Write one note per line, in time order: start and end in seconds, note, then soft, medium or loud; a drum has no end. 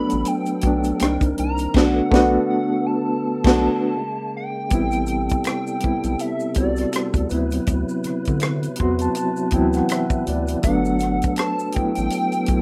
0.00 0.63 F#3 medium
0.00 0.97 F#3 medium
0.00 0.64 A3 medium
0.00 0.65 B3 medium
0.00 0.98 B3 medium
0.00 0.67 D4 medium
0.00 0.98 A4 medium
0.00 0.29 B5 loud
0.10 0.24 A1 medium
0.10 closed hi-hat soft
0.10 maracas soft
0.25 1.01 G5 loud
0.25 closed hi-hat medium
0.25 maracas medium
0.46 closed hi-hat soft
0.46 maracas soft
0.61 0.93 B1 medium
0.61 1.00 F#3 medium
0.61 1.01 A3 medium
0.61 kick medium
0.61 closed hi-hat medium
0.65 1.01 B3 medium
0.65 1.02 D4 medium
0.84 closed hi-hat soft
0.84 maracas soft
0.99 1.18 C2 medium
0.99 1.74 D#3 medium
0.99 1.68 G3 medium
0.99 1.69 A#3 medium
0.99 1.75 C4 medium
0.99 1.70 D4 medium
0.99 1.74 A#4 medium
0.99 1.15 G5 medium
0.99 finger snap medium
0.99 cross-stick loud
0.99 closed hi-hat medium
0.99 maracas medium
1.04 1.71 D#4 medium
1.21 1.34 C2 medium
1.21 kick medium
1.21 closed hi-hat soft
1.21 maracas soft
1.38 1.68 C2 medium
1.38 1.77 A#5 loud
1.38 closed hi-hat medium
1.58 closed hi-hat soft
1.58 maracas soft
1.74 2.01 B1 loud
1.74 3.95 D3 medium
1.74 2.01 A3 medium
1.74 3.95 B3 medium
1.74 2.02 B3 medium
1.74 2.02 D4 medium
1.74 3.94 A4 medium
1.74 2.49 F#5 loud
1.74 kick loud
1.74 snare medium
1.74 crash medium
1.79 2.03 F#4 medium
2.11 2.38 B1 loud
2.11 2.38 A3 medium
2.11 2.38 B3 medium
2.11 2.39 D4 medium
2.11 kick loud
2.11 snare loud
2.16 2.40 F#4 loud
2.50 2.88 F#5 medium
2.86 4.34 A5 medium
3.44 3.69 B1 loud
3.44 3.68 A3 medium
3.44 3.69 B3 loud
3.44 3.70 D4 medium
3.44 kick loud
3.44 snare loud
3.44 crash medium
3.49 3.71 F#4 loud
3.96 4.70 C#3 medium
3.96 4.70 G#3 medium
3.96 4.70 A#3 medium
4.37 5.42 G5 loud
4.70 5.30 A1 medium
4.70 10.60 C3 medium
4.70 5.73 G3 medium
4.70 7.28 G3 medium
4.70 5.73 B3 medium
4.70 5.74 C4 medium
4.70 7.28 A4 medium
4.70 kick loud
4.70 closed hi-hat medium
4.70 maracas medium
4.75 5.75 E4 medium
4.91 closed hi-hat soft
4.91 maracas soft
5.06 closed hi-hat soft
5.06 maracas soft
5.29 kick medium
5.29 closed hi-hat soft
5.29 maracas soft
5.44 6.22 G5 loud
5.44 finger snap medium
5.44 cross-stick loud
5.44 closed hi-hat medium
5.44 maracas medium
5.67 maracas soft
5.80 6.49 G3 medium
5.80 6.50 B3 medium
5.80 6.51 C4 medium
5.80 kick medium
5.80 closed hi-hat medium
5.85 5.93 B1 soft
5.85 6.52 E4 medium
6.03 6.16 B1 medium
6.03 closed hi-hat soft
6.03 maracas soft
6.19 6.57 E5 medium
6.19 closed hi-hat medium
6.19 maracas medium
6.40 maracas soft
6.54 6.86 C2 medium
6.54 7.30 G3 medium
6.54 7.29 B3 medium
6.54 7.27 D5 medium
6.54 kick medium
6.54 closed hi-hat medium
6.54 maracas soft
6.60 7.31 C4 medium
6.60 7.33 F#4 medium
6.76 closed hi-hat soft
6.76 maracas soft
6.82 cross-stick soft
6.93 finger snap medium
6.93 cross-stick medium
6.93 closed hi-hat medium
6.93 maracas medium
7.14 7.27 D2 medium
7.14 kick loud
7.14 closed hi-hat soft
7.14 maracas soft
7.29 7.60 D2 loud
7.29 8.66 F#3 medium
7.29 10.60 F#3 medium
7.29 8.67 B3 medium
7.29 8.67 C4 medium
7.29 10.60 E4 medium
7.29 10.60 B4 medium
7.29 closed hi-hat medium
7.29 maracas soft
7.34 8.68 E4 medium
7.51 closed hi-hat medium
7.51 maracas soft
7.67 7.85 D2 loud
7.67 kick loud
7.67 closed hi-hat medium
7.67 maracas medium
7.89 maracas soft
8.04 8.13 D3 soft
8.04 cross-stick soft
8.04 closed hi-hat medium
8.04 maracas soft
8.25 8.69 D3 medium
8.25 kick medium
8.25 closed hi-hat soft
8.25 maracas soft
8.40 finger snap medium
8.40 cross-stick loud
8.40 closed hi-hat medium
8.40 maracas medium
8.63 closed hi-hat soft
8.63 maracas soft
8.76 9.46 F#3 medium
8.76 9.47 B3 medium
8.76 closed hi-hat medium
8.80 9.09 E2 medium
8.80 9.48 C4 medium
8.80 9.49 F#4 medium
8.80 8.99 C6 medium
8.80 kick medium
8.99 9.15 A5 medium
8.99 closed hi-hat soft
8.99 maracas soft
9.15 9.51 A5 medium
9.15 closed hi-hat medium
9.15 maracas medium
9.37 maracas soft
9.51 9.82 D2 loud
9.51 9.59 E3 medium
9.51 10.55 B3 medium
9.51 10.55 C4 medium
9.51 9.73 G5 medium
9.51 kick medium
9.51 closed hi-hat medium
9.51 maracas soft
9.56 10.57 F#3 medium
9.56 10.56 E4 loud
9.73 9.89 F#5 medium
9.73 closed hi-hat soft
9.73 maracas soft
9.77 cross-stick soft
9.89 10.25 E5 medium
9.89 finger snap medium
9.89 cross-stick loud
9.89 closed hi-hat medium
9.89 maracas medium
10.10 kick medium
10.10 maracas soft
10.27 10.56 D2 medium
10.27 10.62 D5 medium
10.27 closed hi-hat medium
10.27 maracas soft
10.47 closed hi-hat medium
10.47 maracas soft
10.62 11.22 G1 loud
10.62 12.62 F#3 medium
10.62 11.65 F#3 medium
10.62 11.66 A3 medium
10.62 12.62 B3 medium
10.62 11.67 B3 medium
10.62 12.62 A4 medium
10.62 11.34 F#5 loud
10.62 kick loud
10.62 closed hi-hat medium
10.62 maracas medium
10.67 11.67 D4 loud
10.85 maracas soft
10.99 cross-stick soft
10.99 closed hi-hat medium
10.99 maracas soft
11.22 kick medium
11.22 closed hi-hat soft
11.22 maracas soft
11.36 11.76 A5 loud
11.36 finger snap medium
11.36 cross-stick loud
11.36 closed hi-hat medium
11.36 maracas medium
11.59 maracas soft
11.72 12.43 F#3 medium
11.72 12.43 A3 medium
11.72 11.95 G5 medium
11.72 closed hi-hat medium
11.76 11.85 A1 soft
11.76 12.44 B3 medium
11.76 12.45 E4 medium
11.76 kick medium
11.95 12.09 A1 medium
11.95 12.62 G5 medium
11.95 closed hi-hat soft
11.95 maracas soft
12.10 closed hi-hat medium
12.10 maracas medium
12.32 closed hi-hat soft
12.32 maracas soft
12.46 12.62 B1 medium
12.46 12.62 F#3 medium
12.46 12.62 A3 medium
12.46 kick medium
12.46 closed hi-hat medium
12.46 maracas soft
12.52 12.62 B3 medium
12.52 12.62 E4 medium